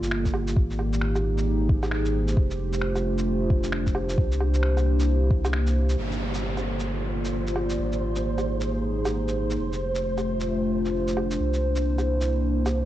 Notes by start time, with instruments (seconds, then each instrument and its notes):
Already playing: sub bass G1, analog synth pad A#3 F4 G4 A4 D5
0.03 shaker
0.11 finger snap
0.25 kick, shaker
0.34 low woodblock
0.47 shaker
0.56 sub bass G#1, kick
0.69 analog synth pad D#4, shaker
0.79 low woodblock
0.93 shaker
1.01 finger snap
1.15 analog synth pad G#4 C5, low woodblock, shaker
1.38 shaker
1.69 kick
1.83 low woodblock, shaker
1.91 finger snap
2.05 shaker
2.28 shaker
2.37 sub bass F1, analog synth pad A3, kick
2.51 analog synth pad D4, shaker
2.57 analog synth pad F4
2.73 shaker
2.82 finger snap
2.96 low woodblock, shaker
3.18 shaker
3.50 kick
3.64 shaker
3.72 finger snap
3.87 kick, shaker
3.95 low woodblock
4.09 shaker
4.18 sub bass C2, analog synth pad A#3, kick
4.32 shaker
4.40 low woodblock
4.54 shaker
4.63 analog synth pad E4, finger snap
4.77 low woodblock, shaker
5.00 shaker
5.31 kick
5.45 low woodblock, shaker
5.53 finger snap
5.67 shaker
5.89 shaker
5.98 sub bass G1, synth texture C5, downlifter
6.12 shaker
6.29 analog synth pad F4
6.34 shaker
6.41 analog synth pad A4
6.57 low woodblock, shaker
6.80 analog synth pad D5, shaker
7.25 shaker
7.47 shaker
7.56 low woodblock
7.70 shaker
7.78 sub bass G#1
7.92 shaker
8.01 analog synth pad G#4
8.12 analog synth pad D#4, shaker
8.38 low woodblock, shaker
8.60 analog synth pad C5, shaker
9.05 low woodblock, shaker
9.28 shaker
9.50 shaker
9.58 sub bass F1, analog synth pad A3
9.73 shaker
9.77 analog synth pad F4
9.86 analog synth pad D4
9.95 shaker
10.18 low woodblock, shaker
10.40 shaker
10.85 shaker
11.08 shaker
11.17 low woodblock
11.31 shaker
11.39 sub bass C2, analog synth pad A#3
11.54 shaker
11.60 analog synth pad E4
11.76 shaker
11.98 low woodblock, shaker
12.21 shaker
12.66 low woodblock, shaker